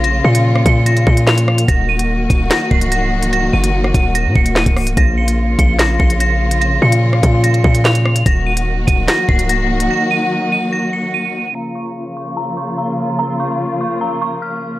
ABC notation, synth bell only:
X:1
M:4/4
L:1/8
Q:1/4=146
K:Bbm
V:1 name="Synth bell"
b' d'' z d'' b' d'' f''2 | b' e'' z e'' b' c'' b'2 | b' e'' z e'' b' d'' e''2 | b' d'' z d'' b' d'' b'2 |
b' d'' z d'' b' d'' f''2 | b' e'' z e'' b' c'' b'2 | b' e'' z e'' b' d'' e''2 | b d' z d' b d' b2 |
b d' z d' b d' f'2 |]